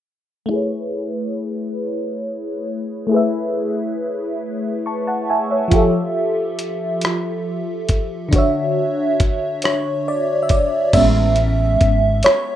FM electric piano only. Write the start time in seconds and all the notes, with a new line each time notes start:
0.46 A3 E4
0.51 G#4 B4
0.56 C#5
3.07 A3 E4
3.11 G#4 B4
3.16 E5
4.86 A5 C#6
5.07 F#5 A5
5.30 E5 G#5
5.51 C#5 E5
5.68 F3 F4
5.73 G4 A4
5.78 E5
8.29 D3 D4
8.34 F#4 C#5
8.38 E5
9.64 C#5
10.08 D5
10.43 E5
10.51 D5
10.94 G#3 B3 C#4 E5
12.24 C#5